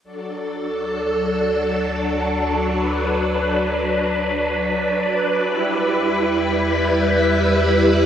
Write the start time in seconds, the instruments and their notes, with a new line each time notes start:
0.04 analog synth bass D2, string machine F#3 D4 A4
2.74 string machine B4
5.43 analog synth bass E2, string machine G3 E4